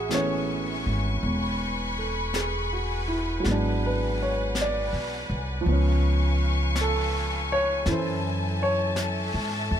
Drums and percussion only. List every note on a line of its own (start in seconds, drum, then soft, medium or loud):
0.11 brush sweep soft
0.11 snare soft
0.11 hi-hat pedal soft
1.23 brush sweep soft
2.34 brush sweep soft
2.34 snare soft
2.34 hi-hat pedal soft
3.44 brush sweep soft
3.44 snare soft
4.55 brush sweep soft
4.55 snare soft
4.55 hi-hat pedal soft
5.65 brush sweep soft
6.76 brush sweep soft
6.76 snare soft
6.76 hi-hat pedal medium
7.86 brush sweep soft
7.86 snare soft
8.96 brush sweep soft
8.96 snare soft
8.96 hi-hat pedal medium